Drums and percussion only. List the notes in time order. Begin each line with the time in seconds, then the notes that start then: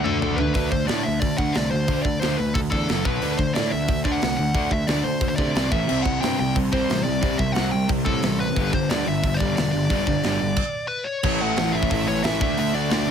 0.06 mid tom
0.22 floor tom
0.38 floor tom
0.54 kick, open hi-hat
0.72 kick
0.88 snare, open hi-hat
1.22 kick, open hi-hat
1.38 kick
1.54 snare, open hi-hat
1.88 kick, open hi-hat
2.05 kick
2.22 snare, open hi-hat
2.55 kick, open hi-hat
2.72 kick
2.89 snare, open hi-hat
3.05 kick
3.22 open hi-hat
3.39 kick
3.55 snare, open hi-hat
3.88 kick, open hi-hat
4.05 kick
4.22 snare, open hi-hat
4.54 kick, open hi-hat
4.71 kick
4.88 snare, open hi-hat
5.21 kick, open hi-hat
5.38 kick
5.56 snare, open hi-hat
5.72 kick
5.89 crash
6.05 kick
6.23 snare, open hi-hat
6.56 kick, open hi-hat
6.73 kick
6.90 snare, open hi-hat
7.22 kick, open hi-hat
7.39 kick
7.55 snare, open hi-hat
7.89 kick, open hi-hat
8.06 kick
8.23 snare, open hi-hat
8.56 kick, open hi-hat
8.73 kick
8.90 snare, open hi-hat
9.24 kick, open hi-hat
9.40 kick
9.57 snare, open hi-hat
9.90 kick, open hi-hat
10.07 kick
10.23 snare, open hi-hat
10.56 kick, crash
11.23 kick, crash
11.57 snare, open hi-hat
11.83 kick
11.90 kick, open hi-hat
12.24 snare, open hi-hat
12.41 kick
12.57 open hi-hat
12.90 snare, open hi-hat